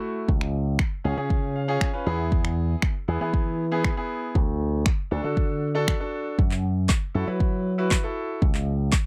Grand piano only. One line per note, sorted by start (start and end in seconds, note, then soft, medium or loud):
0.00 0.28 A3 medium
0.00 0.28 E4 medium
0.00 0.29 F#4 medium
1.04 1.15 C#4 medium
1.04 1.15 F4 medium
1.04 1.15 G#4 medium
1.17 1.60 C#4 medium
1.17 1.60 F4 medium
1.17 1.60 G#4 medium
1.56 1.79 F5 medium
1.68 1.90 C#4 loud
1.68 1.90 F4 medium
1.68 1.90 G#4 loud
1.93 2.06 C#4 medium
1.93 2.06 F4 medium
1.93 2.07 B4 medium
2.06 2.92 B3 medium
2.06 2.92 E4 medium
2.06 2.92 G#4 loud
2.06 2.30 B5 medium
3.08 3.19 B3 medium
3.08 3.19 E4 medium
3.08 3.19 G#4 medium
3.21 3.63 B3 medium
3.21 3.64 E4 medium
3.21 3.64 G#4 medium
3.71 3.93 B3 loud
3.71 3.93 E4 medium
3.71 3.93 G#4 loud
3.97 4.35 B3 medium
3.97 4.35 E4 medium
3.97 4.35 G#4 loud
5.11 5.22 D4 medium
5.11 5.22 F#4 medium
5.11 5.22 A4 medium
5.24 5.67 D4 medium
5.24 5.67 F#4 medium
5.24 5.67 A4 medium
5.75 5.96 D4 medium
5.75 5.96 F#4 medium
5.75 5.96 A4 loud
6.00 6.38 D4 medium
6.00 6.39 F#4 medium
6.00 6.39 A4 medium
7.15 7.25 E4 medium
7.15 7.25 F#4 medium
7.15 7.26 A4 medium
7.27 7.70 E4 medium
7.27 7.70 F#4 medium
7.27 7.70 B4 medium
7.78 8.00 E4 medium
7.78 8.00 F#4 medium
7.78 8.00 B4 loud
8.03 8.42 E4 medium
8.03 8.42 F#4 medium
8.03 8.42 A4 medium